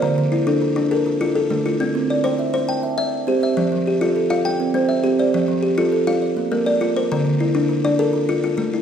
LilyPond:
<<
  \new Staff \with { instrumentName = "Kalimba" } { \time 12/8 \key f \major \tempo 4. = 136 << { <bes' c''>4 r8 a'4. bes'4 e'4 d'8 e'8~ | e'4 r8 g''4. a''4 d''4 c''8 d''8~ | d''4 r8 a'4. d''4 c''4. c''8~ | c''4 r8 a'4. d''4 bes'4. bes'8~ |
bes'4 r8 f'4. bes'4. r4. | } \\ { r8 d4 r8 f'4 r8 f'4 r8 d4 | r8 c'4 r8 e''4 r8 e''4 r8 c'4 | r8 f4 r8 a'4 r8 c'4 r8 c'4 | r8 f4 r8 a'4 r8 bes4 r8 bes4 |
r8 d4 r8 f'4 r8 f'4 r8 d4 | } >> }
  \new Staff \with { instrumentName = "Kalimba" } { \time 12/8 \key f \major << { d''8 r8 e'4. r8 a'4. a'4 f'8~ | f'8 r8 d''4. r8 g''4. r4 e''8~ | e''8 r8 g'4. f''8 g''4. e''4 d''8~ | d''8 r8 g'4. f''4 r4 d''4 c''8~ |
c''8 r8 e'4. d''8 a'4. f'4 e'8 | } \\ { d4 r8 d'4 d'4 r8 f'4 a4 | c'4 r8 c''4 c''4 r8 e''4 g'4 | f4 r8 f'4 f'8 r4 c'4 g'4 | f4 r8 f'4 f'8 r4 bes4 f'4 |
d4 r8 d'4 d'4 r8 f'4 a4 | } >> }
>>